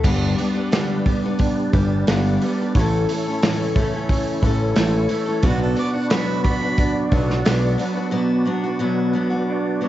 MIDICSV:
0, 0, Header, 1, 7, 480
1, 0, Start_track
1, 0, Tempo, 673401
1, 35, Time_signature, 4, 2, 24, 8
1, 7045, End_track
2, 0, Start_track
2, 0, Title_t, "Harmonica"
2, 0, Program_c, 0, 22
2, 3902, Note_on_c, 0, 66, 81
2, 4005, Note_off_c, 0, 66, 0
2, 4008, Note_on_c, 0, 69, 74
2, 4118, Note_off_c, 0, 69, 0
2, 4129, Note_on_c, 0, 74, 81
2, 4229, Note_on_c, 0, 78, 74
2, 4240, Note_off_c, 0, 74, 0
2, 4342, Note_off_c, 0, 78, 0
2, 4346, Note_on_c, 0, 83, 77
2, 4585, Note_off_c, 0, 83, 0
2, 4590, Note_on_c, 0, 83, 92
2, 5062, Note_off_c, 0, 83, 0
2, 7045, End_track
3, 0, Start_track
3, 0, Title_t, "Tonewheel organ"
3, 0, Program_c, 1, 16
3, 35, Note_on_c, 1, 62, 56
3, 36, Note_on_c, 1, 71, 57
3, 42, Note_on_c, 1, 74, 62
3, 43, Note_on_c, 1, 67, 57
3, 1942, Note_off_c, 1, 62, 0
3, 1942, Note_off_c, 1, 71, 0
3, 1945, Note_off_c, 1, 74, 0
3, 1946, Note_off_c, 1, 67, 0
3, 1955, Note_on_c, 1, 69, 56
3, 1957, Note_on_c, 1, 73, 59
3, 1963, Note_on_c, 1, 64, 60
3, 1970, Note_on_c, 1, 61, 60
3, 3861, Note_off_c, 1, 69, 0
3, 3863, Note_off_c, 1, 73, 0
3, 3863, Note_on_c, 1, 74, 55
3, 3866, Note_off_c, 1, 64, 0
3, 3867, Note_on_c, 1, 66, 58
3, 3867, Note_on_c, 1, 71, 59
3, 3868, Note_on_c, 1, 62, 58
3, 3869, Note_off_c, 1, 61, 0
3, 5772, Note_off_c, 1, 74, 0
3, 5774, Note_off_c, 1, 66, 0
3, 5774, Note_off_c, 1, 71, 0
3, 5775, Note_off_c, 1, 62, 0
3, 5798, Note_on_c, 1, 71, 61
3, 5799, Note_on_c, 1, 66, 66
3, 5800, Note_on_c, 1, 74, 67
3, 7045, Note_off_c, 1, 66, 0
3, 7045, Note_off_c, 1, 71, 0
3, 7045, Note_off_c, 1, 74, 0
3, 7045, End_track
4, 0, Start_track
4, 0, Title_t, "Clean electric guitar"
4, 0, Program_c, 2, 27
4, 1005, Note_on_c, 2, 62, 61
4, 1964, Note_off_c, 2, 62, 0
4, 2925, Note_on_c, 2, 61, 62
4, 3885, Note_off_c, 2, 61, 0
4, 4831, Note_on_c, 2, 62, 66
4, 6035, Note_off_c, 2, 62, 0
4, 6768, Note_on_c, 2, 62, 64
4, 7045, Note_off_c, 2, 62, 0
4, 7045, End_track
5, 0, Start_track
5, 0, Title_t, "Steel-string acoustic guitar"
5, 0, Program_c, 3, 25
5, 26, Note_on_c, 3, 43, 74
5, 32, Note_on_c, 3, 55, 82
5, 34, Note_on_c, 3, 50, 79
5, 35, Note_on_c, 3, 59, 73
5, 36, Note_on_c, 3, 62, 78
5, 38, Note_on_c, 3, 67, 86
5, 263, Note_off_c, 3, 55, 0
5, 268, Note_off_c, 3, 59, 0
5, 270, Note_off_c, 3, 62, 0
5, 271, Note_off_c, 3, 43, 0
5, 272, Note_on_c, 3, 55, 64
5, 273, Note_off_c, 3, 67, 0
5, 276, Note_off_c, 3, 50, 0
5, 277, Note_on_c, 3, 59, 64
5, 278, Note_on_c, 3, 62, 65
5, 281, Note_on_c, 3, 67, 67
5, 380, Note_off_c, 3, 67, 0
5, 382, Note_off_c, 3, 62, 0
5, 384, Note_off_c, 3, 59, 0
5, 389, Note_on_c, 3, 67, 52
5, 390, Note_on_c, 3, 62, 51
5, 393, Note_on_c, 3, 59, 49
5, 394, Note_off_c, 3, 55, 0
5, 407, Note_on_c, 3, 55, 39
5, 505, Note_off_c, 3, 55, 0
5, 507, Note_off_c, 3, 62, 0
5, 509, Note_on_c, 3, 43, 74
5, 511, Note_off_c, 3, 59, 0
5, 513, Note_off_c, 3, 67, 0
5, 513, Note_on_c, 3, 55, 72
5, 516, Note_on_c, 3, 50, 70
5, 516, Note_on_c, 3, 62, 75
5, 519, Note_on_c, 3, 59, 62
5, 522, Note_on_c, 3, 67, 80
5, 747, Note_off_c, 3, 55, 0
5, 754, Note_off_c, 3, 43, 0
5, 756, Note_on_c, 3, 55, 55
5, 757, Note_off_c, 3, 50, 0
5, 757, Note_off_c, 3, 59, 0
5, 757, Note_off_c, 3, 62, 0
5, 760, Note_off_c, 3, 67, 0
5, 766, Note_on_c, 3, 59, 61
5, 771, Note_on_c, 3, 62, 62
5, 776, Note_on_c, 3, 67, 65
5, 872, Note_off_c, 3, 67, 0
5, 877, Note_off_c, 3, 55, 0
5, 880, Note_off_c, 3, 62, 0
5, 880, Note_on_c, 3, 67, 55
5, 882, Note_off_c, 3, 59, 0
5, 888, Note_on_c, 3, 62, 49
5, 895, Note_on_c, 3, 59, 51
5, 896, Note_on_c, 3, 55, 45
5, 1231, Note_off_c, 3, 55, 0
5, 1240, Note_off_c, 3, 67, 0
5, 1240, Note_on_c, 3, 55, 56
5, 1241, Note_off_c, 3, 59, 0
5, 1245, Note_off_c, 3, 62, 0
5, 1250, Note_on_c, 3, 59, 59
5, 1255, Note_on_c, 3, 62, 62
5, 1256, Note_on_c, 3, 67, 63
5, 1480, Note_off_c, 3, 55, 0
5, 1482, Note_off_c, 3, 59, 0
5, 1485, Note_off_c, 3, 62, 0
5, 1487, Note_on_c, 3, 43, 88
5, 1488, Note_off_c, 3, 67, 0
5, 1490, Note_on_c, 3, 55, 88
5, 1491, Note_on_c, 3, 59, 82
5, 1493, Note_on_c, 3, 50, 87
5, 1494, Note_on_c, 3, 62, 79
5, 1497, Note_on_c, 3, 67, 85
5, 1724, Note_off_c, 3, 43, 0
5, 1726, Note_off_c, 3, 55, 0
5, 1726, Note_off_c, 3, 59, 0
5, 1727, Note_off_c, 3, 50, 0
5, 1728, Note_off_c, 3, 62, 0
5, 1729, Note_off_c, 3, 67, 0
5, 1736, Note_on_c, 3, 55, 59
5, 1740, Note_on_c, 3, 59, 64
5, 1744, Note_on_c, 3, 62, 63
5, 1753, Note_on_c, 3, 67, 71
5, 1846, Note_off_c, 3, 67, 0
5, 1849, Note_off_c, 3, 55, 0
5, 1851, Note_off_c, 3, 59, 0
5, 1853, Note_off_c, 3, 62, 0
5, 1855, Note_on_c, 3, 67, 53
5, 1861, Note_on_c, 3, 62, 54
5, 1865, Note_on_c, 3, 59, 50
5, 1871, Note_on_c, 3, 55, 46
5, 1968, Note_off_c, 3, 67, 0
5, 1971, Note_off_c, 3, 62, 0
5, 1973, Note_off_c, 3, 59, 0
5, 1976, Note_off_c, 3, 55, 0
5, 1979, Note_on_c, 3, 45, 73
5, 1987, Note_on_c, 3, 61, 81
5, 1988, Note_on_c, 3, 57, 80
5, 1990, Note_on_c, 3, 52, 88
5, 1994, Note_on_c, 3, 69, 87
5, 2194, Note_off_c, 3, 52, 0
5, 2203, Note_off_c, 3, 57, 0
5, 2203, Note_on_c, 3, 52, 63
5, 2211, Note_off_c, 3, 45, 0
5, 2211, Note_on_c, 3, 57, 70
5, 2213, Note_off_c, 3, 61, 0
5, 2218, Note_off_c, 3, 69, 0
5, 2222, Note_on_c, 3, 61, 68
5, 2227, Note_on_c, 3, 69, 69
5, 2323, Note_off_c, 3, 52, 0
5, 2327, Note_off_c, 3, 57, 0
5, 2328, Note_off_c, 3, 69, 0
5, 2332, Note_off_c, 3, 61, 0
5, 2337, Note_on_c, 3, 69, 52
5, 2346, Note_on_c, 3, 61, 49
5, 2355, Note_on_c, 3, 57, 40
5, 2443, Note_off_c, 3, 57, 0
5, 2446, Note_on_c, 3, 45, 71
5, 2450, Note_off_c, 3, 61, 0
5, 2450, Note_off_c, 3, 69, 0
5, 2450, Note_on_c, 3, 52, 78
5, 2451, Note_on_c, 3, 57, 84
5, 2458, Note_on_c, 3, 61, 87
5, 2462, Note_on_c, 3, 69, 83
5, 2679, Note_off_c, 3, 52, 0
5, 2685, Note_off_c, 3, 45, 0
5, 2687, Note_off_c, 3, 57, 0
5, 2688, Note_on_c, 3, 52, 53
5, 2689, Note_off_c, 3, 61, 0
5, 2693, Note_off_c, 3, 69, 0
5, 2696, Note_on_c, 3, 57, 64
5, 2697, Note_on_c, 3, 61, 70
5, 2701, Note_on_c, 3, 69, 69
5, 2798, Note_off_c, 3, 69, 0
5, 2805, Note_off_c, 3, 52, 0
5, 2806, Note_on_c, 3, 69, 57
5, 2810, Note_off_c, 3, 57, 0
5, 2810, Note_off_c, 3, 61, 0
5, 2819, Note_on_c, 3, 61, 49
5, 2823, Note_on_c, 3, 57, 49
5, 3160, Note_off_c, 3, 57, 0
5, 3165, Note_off_c, 3, 69, 0
5, 3166, Note_off_c, 3, 61, 0
5, 3168, Note_on_c, 3, 52, 59
5, 3169, Note_on_c, 3, 57, 63
5, 3175, Note_on_c, 3, 61, 71
5, 3178, Note_on_c, 3, 69, 76
5, 3392, Note_off_c, 3, 52, 0
5, 3392, Note_off_c, 3, 61, 0
5, 3395, Note_on_c, 3, 45, 73
5, 3396, Note_off_c, 3, 69, 0
5, 3397, Note_off_c, 3, 57, 0
5, 3401, Note_on_c, 3, 52, 81
5, 3401, Note_on_c, 3, 61, 85
5, 3405, Note_on_c, 3, 57, 82
5, 3405, Note_on_c, 3, 69, 88
5, 3618, Note_off_c, 3, 52, 0
5, 3626, Note_off_c, 3, 57, 0
5, 3627, Note_on_c, 3, 52, 59
5, 3635, Note_off_c, 3, 61, 0
5, 3635, Note_on_c, 3, 57, 64
5, 3636, Note_off_c, 3, 69, 0
5, 3640, Note_off_c, 3, 45, 0
5, 3644, Note_on_c, 3, 61, 66
5, 3645, Note_on_c, 3, 69, 73
5, 3739, Note_off_c, 3, 69, 0
5, 3748, Note_on_c, 3, 69, 56
5, 3751, Note_off_c, 3, 61, 0
5, 3755, Note_off_c, 3, 52, 0
5, 3759, Note_off_c, 3, 57, 0
5, 3760, Note_on_c, 3, 61, 51
5, 3767, Note_on_c, 3, 57, 46
5, 3874, Note_on_c, 3, 47, 79
5, 3874, Note_on_c, 3, 54, 88
5, 3876, Note_off_c, 3, 69, 0
5, 3877, Note_off_c, 3, 57, 0
5, 3880, Note_on_c, 3, 59, 90
5, 3881, Note_off_c, 3, 61, 0
5, 3883, Note_on_c, 3, 66, 87
5, 3884, Note_on_c, 3, 62, 84
5, 4094, Note_off_c, 3, 54, 0
5, 4103, Note_off_c, 3, 59, 0
5, 4103, Note_on_c, 3, 54, 63
5, 4111, Note_off_c, 3, 62, 0
5, 4112, Note_on_c, 3, 59, 72
5, 4117, Note_off_c, 3, 66, 0
5, 4119, Note_off_c, 3, 47, 0
5, 4120, Note_on_c, 3, 62, 71
5, 4125, Note_on_c, 3, 66, 71
5, 4222, Note_off_c, 3, 66, 0
5, 4231, Note_on_c, 3, 66, 54
5, 4233, Note_off_c, 3, 54, 0
5, 4235, Note_off_c, 3, 62, 0
5, 4238, Note_off_c, 3, 59, 0
5, 4244, Note_on_c, 3, 62, 46
5, 4251, Note_on_c, 3, 59, 43
5, 4353, Note_off_c, 3, 62, 0
5, 4353, Note_on_c, 3, 54, 66
5, 4354, Note_off_c, 3, 59, 0
5, 4354, Note_on_c, 3, 47, 69
5, 4356, Note_off_c, 3, 66, 0
5, 4362, Note_on_c, 3, 59, 81
5, 4362, Note_on_c, 3, 62, 75
5, 4364, Note_on_c, 3, 66, 88
5, 4581, Note_off_c, 3, 54, 0
5, 4589, Note_off_c, 3, 59, 0
5, 4590, Note_on_c, 3, 54, 63
5, 4597, Note_on_c, 3, 59, 69
5, 4598, Note_off_c, 3, 62, 0
5, 4599, Note_off_c, 3, 47, 0
5, 4604, Note_off_c, 3, 66, 0
5, 4606, Note_on_c, 3, 62, 76
5, 4613, Note_on_c, 3, 66, 75
5, 4702, Note_off_c, 3, 66, 0
5, 4711, Note_on_c, 3, 66, 50
5, 4714, Note_off_c, 3, 62, 0
5, 4717, Note_off_c, 3, 54, 0
5, 4720, Note_off_c, 3, 59, 0
5, 4722, Note_on_c, 3, 62, 56
5, 4734, Note_on_c, 3, 59, 50
5, 5073, Note_off_c, 3, 62, 0
5, 5074, Note_off_c, 3, 59, 0
5, 5074, Note_on_c, 3, 54, 63
5, 5077, Note_off_c, 3, 66, 0
5, 5081, Note_on_c, 3, 62, 67
5, 5083, Note_on_c, 3, 59, 60
5, 5087, Note_on_c, 3, 66, 68
5, 5306, Note_off_c, 3, 59, 0
5, 5309, Note_off_c, 3, 54, 0
5, 5309, Note_off_c, 3, 62, 0
5, 5309, Note_on_c, 3, 47, 74
5, 5314, Note_on_c, 3, 59, 89
5, 5315, Note_off_c, 3, 66, 0
5, 5318, Note_on_c, 3, 54, 80
5, 5318, Note_on_c, 3, 62, 91
5, 5323, Note_on_c, 3, 66, 84
5, 5537, Note_off_c, 3, 54, 0
5, 5546, Note_off_c, 3, 62, 0
5, 5546, Note_on_c, 3, 54, 63
5, 5547, Note_off_c, 3, 59, 0
5, 5555, Note_on_c, 3, 62, 63
5, 5556, Note_off_c, 3, 47, 0
5, 5556, Note_on_c, 3, 59, 62
5, 5557, Note_off_c, 3, 66, 0
5, 5566, Note_on_c, 3, 66, 65
5, 5654, Note_off_c, 3, 66, 0
5, 5663, Note_on_c, 3, 66, 50
5, 5668, Note_off_c, 3, 62, 0
5, 5674, Note_off_c, 3, 54, 0
5, 5674, Note_off_c, 3, 59, 0
5, 5677, Note_on_c, 3, 62, 52
5, 5683, Note_on_c, 3, 59, 49
5, 5778, Note_off_c, 3, 59, 0
5, 5780, Note_off_c, 3, 66, 0
5, 5781, Note_off_c, 3, 62, 0
5, 5781, Note_on_c, 3, 47, 76
5, 5786, Note_on_c, 3, 54, 88
5, 5787, Note_on_c, 3, 59, 81
5, 5788, Note_on_c, 3, 66, 98
5, 5790, Note_on_c, 3, 62, 88
5, 6017, Note_off_c, 3, 54, 0
5, 6024, Note_off_c, 3, 59, 0
5, 6025, Note_on_c, 3, 54, 66
5, 6030, Note_off_c, 3, 62, 0
5, 6030, Note_off_c, 3, 66, 0
5, 6031, Note_off_c, 3, 47, 0
5, 6032, Note_on_c, 3, 59, 69
5, 6038, Note_on_c, 3, 66, 72
5, 6039, Note_on_c, 3, 62, 75
5, 6147, Note_off_c, 3, 66, 0
5, 6153, Note_off_c, 3, 54, 0
5, 6156, Note_on_c, 3, 66, 57
5, 6157, Note_off_c, 3, 59, 0
5, 6160, Note_off_c, 3, 62, 0
5, 6168, Note_on_c, 3, 62, 50
5, 6176, Note_on_c, 3, 59, 45
5, 6262, Note_off_c, 3, 59, 0
5, 6265, Note_off_c, 3, 62, 0
5, 6266, Note_on_c, 3, 47, 67
5, 6266, Note_on_c, 3, 54, 79
5, 6270, Note_off_c, 3, 66, 0
5, 6271, Note_on_c, 3, 59, 82
5, 6273, Note_on_c, 3, 62, 88
5, 6278, Note_on_c, 3, 66, 80
5, 6501, Note_off_c, 3, 54, 0
5, 6509, Note_on_c, 3, 54, 67
5, 6510, Note_off_c, 3, 59, 0
5, 6512, Note_off_c, 3, 47, 0
5, 6513, Note_off_c, 3, 62, 0
5, 6519, Note_off_c, 3, 66, 0
5, 6519, Note_on_c, 3, 59, 74
5, 6521, Note_on_c, 3, 62, 71
5, 6530, Note_on_c, 3, 66, 79
5, 6619, Note_off_c, 3, 66, 0
5, 6627, Note_on_c, 3, 66, 61
5, 6628, Note_off_c, 3, 62, 0
5, 6634, Note_off_c, 3, 54, 0
5, 6637, Note_off_c, 3, 59, 0
5, 6637, Note_on_c, 3, 62, 55
5, 6645, Note_on_c, 3, 59, 47
5, 6987, Note_off_c, 3, 59, 0
5, 6987, Note_off_c, 3, 62, 0
5, 6990, Note_on_c, 3, 54, 61
5, 6992, Note_off_c, 3, 66, 0
5, 6995, Note_on_c, 3, 62, 67
5, 6996, Note_on_c, 3, 59, 65
5, 7004, Note_on_c, 3, 66, 73
5, 7045, Note_off_c, 3, 54, 0
5, 7045, Note_off_c, 3, 59, 0
5, 7045, Note_off_c, 3, 62, 0
5, 7045, Note_off_c, 3, 66, 0
5, 7045, End_track
6, 0, Start_track
6, 0, Title_t, "Picked electric bass"
6, 0, Program_c, 4, 34
6, 31, Note_on_c, 4, 31, 83
6, 239, Note_off_c, 4, 31, 0
6, 1236, Note_on_c, 4, 31, 101
6, 1443, Note_off_c, 4, 31, 0
6, 1482, Note_on_c, 4, 31, 73
6, 1687, Note_off_c, 4, 31, 0
6, 1965, Note_on_c, 4, 33, 89
6, 2169, Note_off_c, 4, 33, 0
6, 3152, Note_on_c, 4, 33, 90
6, 3363, Note_off_c, 4, 33, 0
6, 3395, Note_on_c, 4, 33, 80
6, 3604, Note_off_c, 4, 33, 0
6, 3876, Note_on_c, 4, 35, 94
6, 4085, Note_off_c, 4, 35, 0
6, 5074, Note_on_c, 4, 35, 95
6, 5283, Note_off_c, 4, 35, 0
6, 5319, Note_on_c, 4, 35, 81
6, 5526, Note_off_c, 4, 35, 0
6, 7045, End_track
7, 0, Start_track
7, 0, Title_t, "Drums"
7, 31, Note_on_c, 9, 36, 88
7, 31, Note_on_c, 9, 49, 83
7, 102, Note_off_c, 9, 49, 0
7, 103, Note_off_c, 9, 36, 0
7, 275, Note_on_c, 9, 46, 51
7, 346, Note_off_c, 9, 46, 0
7, 515, Note_on_c, 9, 46, 71
7, 521, Note_on_c, 9, 38, 110
7, 586, Note_off_c, 9, 46, 0
7, 592, Note_off_c, 9, 38, 0
7, 754, Note_on_c, 9, 46, 48
7, 755, Note_on_c, 9, 36, 80
7, 825, Note_off_c, 9, 46, 0
7, 826, Note_off_c, 9, 36, 0
7, 990, Note_on_c, 9, 46, 60
7, 996, Note_on_c, 9, 36, 75
7, 1061, Note_off_c, 9, 46, 0
7, 1067, Note_off_c, 9, 36, 0
7, 1235, Note_on_c, 9, 46, 51
7, 1237, Note_on_c, 9, 36, 73
7, 1307, Note_off_c, 9, 46, 0
7, 1309, Note_off_c, 9, 36, 0
7, 1478, Note_on_c, 9, 46, 70
7, 1483, Note_on_c, 9, 38, 102
7, 1549, Note_off_c, 9, 46, 0
7, 1555, Note_off_c, 9, 38, 0
7, 1721, Note_on_c, 9, 46, 48
7, 1792, Note_off_c, 9, 46, 0
7, 1959, Note_on_c, 9, 46, 62
7, 1960, Note_on_c, 9, 36, 97
7, 2030, Note_off_c, 9, 46, 0
7, 2031, Note_off_c, 9, 36, 0
7, 2201, Note_on_c, 9, 46, 55
7, 2272, Note_off_c, 9, 46, 0
7, 2441, Note_on_c, 9, 46, 82
7, 2446, Note_on_c, 9, 38, 117
7, 2512, Note_off_c, 9, 46, 0
7, 2518, Note_off_c, 9, 38, 0
7, 2678, Note_on_c, 9, 36, 81
7, 2679, Note_on_c, 9, 46, 47
7, 2750, Note_off_c, 9, 36, 0
7, 2750, Note_off_c, 9, 46, 0
7, 2916, Note_on_c, 9, 36, 76
7, 2918, Note_on_c, 9, 46, 73
7, 2988, Note_off_c, 9, 36, 0
7, 2989, Note_off_c, 9, 46, 0
7, 3154, Note_on_c, 9, 36, 75
7, 3154, Note_on_c, 9, 46, 50
7, 3225, Note_off_c, 9, 46, 0
7, 3226, Note_off_c, 9, 36, 0
7, 3389, Note_on_c, 9, 46, 67
7, 3395, Note_on_c, 9, 38, 91
7, 3461, Note_off_c, 9, 46, 0
7, 3466, Note_off_c, 9, 38, 0
7, 3627, Note_on_c, 9, 46, 54
7, 3699, Note_off_c, 9, 46, 0
7, 3868, Note_on_c, 9, 46, 56
7, 3872, Note_on_c, 9, 36, 95
7, 3939, Note_off_c, 9, 46, 0
7, 3944, Note_off_c, 9, 36, 0
7, 4109, Note_on_c, 9, 46, 48
7, 4180, Note_off_c, 9, 46, 0
7, 4350, Note_on_c, 9, 46, 74
7, 4355, Note_on_c, 9, 38, 113
7, 4421, Note_off_c, 9, 46, 0
7, 4427, Note_off_c, 9, 38, 0
7, 4593, Note_on_c, 9, 46, 49
7, 4594, Note_on_c, 9, 36, 75
7, 4664, Note_off_c, 9, 46, 0
7, 4666, Note_off_c, 9, 36, 0
7, 4831, Note_on_c, 9, 46, 62
7, 4834, Note_on_c, 9, 36, 85
7, 4902, Note_off_c, 9, 46, 0
7, 4905, Note_off_c, 9, 36, 0
7, 5073, Note_on_c, 9, 46, 50
7, 5075, Note_on_c, 9, 36, 71
7, 5144, Note_off_c, 9, 46, 0
7, 5146, Note_off_c, 9, 36, 0
7, 5204, Note_on_c, 9, 38, 35
7, 5275, Note_off_c, 9, 38, 0
7, 5314, Note_on_c, 9, 46, 69
7, 5320, Note_on_c, 9, 38, 95
7, 5385, Note_off_c, 9, 46, 0
7, 5391, Note_off_c, 9, 38, 0
7, 5556, Note_on_c, 9, 46, 51
7, 5627, Note_off_c, 9, 46, 0
7, 7045, End_track
0, 0, End_of_file